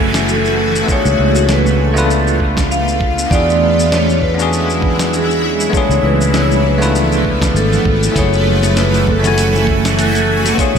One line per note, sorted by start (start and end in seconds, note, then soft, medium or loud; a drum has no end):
0.00 0.82 F#1 medium
0.00 0.86 E3 medium
0.00 0.84 A3 medium
0.00 0.86 A3 medium
0.00 0.91 C#4 medium
0.00 0.90 E4 medium
0.00 0.86 F#4 medium
0.00 0.90 F#4 medium
0.00 0.91 G#4 medium
0.00 0.86 G#5 medium
0.00 0.87 G#5 medium
0.00 downlifter medium
0.14 snare medium
0.14 shaker medium
0.29 0.86 A4 medium
0.29 shaker medium
0.45 shaker soft
0.76 shaker medium
0.84 1.90 A3 medium
0.84 1.91 B3 medium
0.84 1.92 D4 medium
0.89 3.29 D3 medium
0.89 3.29 A3 medium
0.89 3.29 B3 medium
0.89 3.29 F4 medium
0.89 1.93 F4 medium
0.89 1.94 G#4 loud
0.89 1.52 C#5 loud
0.89 kick loud
0.89 shaker medium
1.05 1.15 C#2 medium
1.05 shaker soft
1.19 3.25 C#2 medium
1.35 shaker medium
1.49 1.82 B4 loud
1.49 snare medium
1.49 shaker medium
1.66 shaker soft
1.83 2.38 A4 medium
1.94 2.35 A3 loud
1.94 2.36 B3 medium
1.94 2.37 D4 medium
1.94 2.37 F4 medium
1.94 shaker medium
1.98 2.38 B4 loud
2.11 shaker medium
2.27 shaker soft
2.40 kick medium
2.57 kick loud
2.57 snare medium
2.57 shaker medium
2.71 3.33 F5 loud
2.71 shaker medium
2.88 shaker soft
3.01 kick loud
3.19 shaker medium
3.27 4.32 B3 medium
3.27 4.33 E4 medium
3.31 5.67 E2 loud
3.31 8.12 E3 medium
3.31 5.71 F#3 medium
3.31 5.71 G#3 medium
3.31 4.34 D4 medium
3.31 5.71 E4 medium
3.31 4.35 F#4 medium
3.31 4.36 G#4 loud
3.31 3.93 D5 loud
3.31 kick loud
3.31 shaker medium
3.50 shaker soft
3.80 shaker medium
3.92 4.23 C#5 loud
3.92 snare medium
3.92 shaker medium
4.10 shaker soft
4.22 5.16 B4 medium
4.22 kick medium
4.34 5.68 B3 medium
4.34 5.69 C#4 medium
4.34 5.70 D4 medium
4.39 5.71 F#4 medium
4.39 5.72 G#4 loud
4.39 shaker medium
4.53 shaker medium
4.70 shaker soft
4.82 kick loud
4.99 snare medium
4.99 shaker medium
5.13 5.76 G#4 medium
5.13 shaker medium
5.31 shaker soft
5.60 shaker medium
5.69 6.75 A3 loud
5.69 6.76 B3 medium
5.69 6.77 D4 medium
5.69 kick loud
5.74 8.14 F3 medium
5.74 10.79 A3 medium
5.74 8.14 B3 medium
5.74 6.78 F4 medium
5.74 6.79 G#4 loud
5.74 6.05 C#5 loud
5.74 shaker medium
5.89 5.99 C#2 loud
5.89 shaker soft
6.03 7.54 C#2 medium
6.03 6.36 B4 medium
6.21 shaker medium
6.34 6.66 C#5 medium
6.34 snare medium
6.34 shaker medium
6.51 shaker soft
6.67 7.59 B4 medium
6.78 7.20 A3 medium
6.78 7.21 B3 medium
6.78 7.21 D4 medium
6.78 7.22 F4 medium
6.78 shaker medium
6.82 7.22 B4 loud
6.95 shaker medium
7.12 shaker soft
7.25 kick medium
7.42 kick loud
7.42 snare medium
7.42 shaker medium
7.55 7.77 G#1 loud
7.55 8.18 A4 medium
7.55 shaker medium
7.73 shaker soft
7.85 8.08 G#1 medium
7.85 kick loud
8.03 shaker medium
8.11 9.17 A3 medium
8.11 9.18 C#4 medium
8.11 9.19 E4 medium
8.16 10.52 F#1 loud
8.16 10.56 E3 medium
8.16 10.56 F#4 medium
8.16 9.20 F#4 medium
8.16 9.21 G#4 loud
8.16 8.79 C#5 loud
8.16 10.56 G#5 medium
8.16 kick loud
8.16 closed hi-hat medium
8.16 shaker medium
8.33 shaker soft
8.63 closed hi-hat soft
8.63 high conga medium
8.63 shaker medium
8.77 9.09 B4 medium
8.77 snare medium
8.77 closed hi-hat medium
8.77 shaker medium
8.94 closed hi-hat soft
8.94 shaker soft
9.07 9.64 A4 medium
9.07 kick medium
9.07 high conga medium
9.07 low conga medium
9.19 10.52 A3 medium
9.19 10.54 C#4 medium
9.24 10.55 E4 medium
9.24 10.56 F#4 medium
9.24 10.57 G#5 loud
9.24 closed hi-hat soft
9.24 low conga medium
9.24 shaker medium
9.38 closed hi-hat medium
9.38 shaker medium
9.53 high bongo soft
9.53 high conga medium
9.53 shaker soft
9.67 kick loud
9.85 snare medium
9.85 closed hi-hat soft
9.85 shaker medium
9.98 10.61 A4 medium
9.98 closed hi-hat medium
9.98 high conga medium
9.98 shaker medium
10.15 closed hi-hat soft
10.15 shaker soft
10.45 closed hi-hat soft
10.45 high conga medium
10.45 shaker medium
10.53 10.79 A3 medium
10.53 10.79 B3 medium
10.53 10.79 D4 medium
10.58 10.79 F4 medium
10.58 10.79 G#4 loud
10.58 10.79 C#5 loud
10.58 kick loud
10.58 closed hi-hat medium
10.58 shaker medium
10.75 10.79 C#2 medium